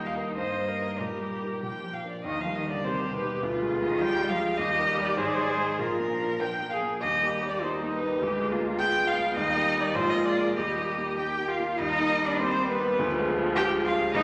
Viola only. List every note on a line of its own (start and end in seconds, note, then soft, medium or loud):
0.00 0.36 D#4 medium
0.37 0.70 C5 medium
0.68 1.01 A#4 medium
1.00 1.94 G4 medium
2.85 3.45 G4 medium
3.43 4.58 F4 medium
4.59 5.19 G4 medium
5.18 5.81 G#4 loud
5.79 6.35 F4 medium
6.41 6.49 A#4 medium
6.72 7.02 G#4 medium
7.02 7.64 G4 medium
7.63 8.24 D#4 medium
8.22 8.53 G4 medium
8.51 9.37 F4 medium
9.37 9.97 D#4 loud
9.96 10.56 F4 loud
10.56 11.47 G4 medium
11.80 13.00 G3 medium
12.99 14.14 F3 loud
14.15 14.23 G3 loud